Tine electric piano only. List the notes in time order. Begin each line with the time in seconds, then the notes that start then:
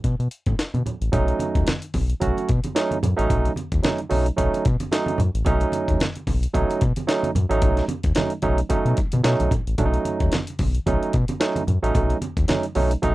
1.12 F#3 A3 C#4 D#4
2.20 F#3 A3 C#4 F#4
2.75 F#3 A3 C#4 D#4
3.16 F#3 A3 C#4 D#4
3.83 F#3 A3 C#4 D#4
4.09 F#3 A3 C#4 D#4
4.36 F#3 A3 C#4 D#4
4.91 F#3 A3 C#4 D#4
5.45 F#3 A3 C#4 D#4
6.53 F#3 A3 C#4 D#4
7.07 F#3 A3 C#4 D#4
7.49 F#3 A3 C#4 D#4
8.15 F#3 A3 C#4 D#4
8.42 F#3 A3 C#4 D#4
8.69 F#3 A3 C#4 D#4
9.23 F#3 A3 C#4 D#4
9.78 F#3 A3 C#4 D4
9.85 D#4
10.86 F#3 A3 C#4 D#4
11.40 F#3 A3 C#4 D#4
11.82 F#3 A3 C#4 D#4
12.48 F#3 A3 C#4 D#4
12.75 F#3 A3 C#4 D#4
13.02 F#3 A3 C#4 D#4